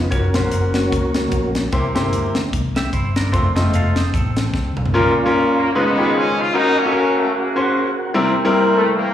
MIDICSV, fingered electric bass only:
0, 0, Header, 1, 2, 480
1, 0, Start_track
1, 0, Tempo, 400802
1, 141, Time_signature, 4, 2, 24, 8
1, 10942, End_track
2, 0, Start_track
2, 0, Title_t, "Fingered electric bass"
2, 0, Program_c, 0, 33
2, 139, Note_on_c, 0, 30, 99
2, 372, Note_off_c, 0, 30, 0
2, 417, Note_on_c, 0, 34, 81
2, 594, Note_off_c, 0, 34, 0
2, 619, Note_on_c, 0, 30, 75
2, 1031, Note_off_c, 0, 30, 0
2, 1106, Note_on_c, 0, 37, 71
2, 1515, Note_off_c, 0, 37, 0
2, 1579, Note_on_c, 0, 34, 77
2, 1992, Note_off_c, 0, 34, 0
2, 2067, Note_on_c, 0, 36, 91
2, 2299, Note_off_c, 0, 36, 0
2, 2337, Note_on_c, 0, 31, 73
2, 2517, Note_off_c, 0, 31, 0
2, 2548, Note_on_c, 0, 38, 77
2, 2959, Note_off_c, 0, 38, 0
2, 3029, Note_on_c, 0, 36, 70
2, 3440, Note_off_c, 0, 36, 0
2, 3506, Note_on_c, 0, 31, 76
2, 3919, Note_off_c, 0, 31, 0
2, 4000, Note_on_c, 0, 29, 90
2, 4230, Note_off_c, 0, 29, 0
2, 4261, Note_on_c, 0, 30, 81
2, 4442, Note_off_c, 0, 30, 0
2, 4473, Note_on_c, 0, 29, 80
2, 4884, Note_off_c, 0, 29, 0
2, 4957, Note_on_c, 0, 33, 79
2, 5366, Note_off_c, 0, 33, 0
2, 5432, Note_on_c, 0, 37, 74
2, 5666, Note_off_c, 0, 37, 0
2, 5705, Note_on_c, 0, 36, 76
2, 5885, Note_off_c, 0, 36, 0
2, 10942, End_track
0, 0, End_of_file